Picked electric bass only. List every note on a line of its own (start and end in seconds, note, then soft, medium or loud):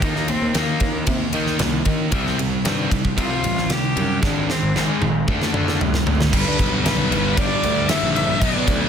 0.02 0.13 D#2 medium
0.16 0.26 D#2 medium
0.42 0.63 D#2 medium
0.81 1.02 D#2 medium
1.07 1.18 C3 medium
1.34 1.55 D#3 medium
1.60 1.81 C2 medium
1.86 2.07 D#3 medium
2.12 2.54 C2 medium
2.65 2.86 G2 loud
3.17 3.28 C2 loud
3.44 3.65 A1 medium
3.97 4.18 F#2 loud
4.23 4.33 G#1 loud
4.37 4.47 G#1 medium
4.63 4.84 G#1 medium
5.02 5.23 G#1 loud
5.28 5.39 D2 medium
5.53 5.75 D3 medium
5.81 6.02 C2 medium
6.07 6.28 G#1 medium
6.33 6.43 G1 medium
6.47 6.57 G2 loud
6.59 7.13 B1 medium
7.12 7.32 G1 medium
7.38 7.48 G1 loud
7.64 7.85 D2 medium
8.03 8.34 A#1 medium
8.42 8.52 B1 loud
8.56 8.66 B2 loud
8.68 8.89 D2 medium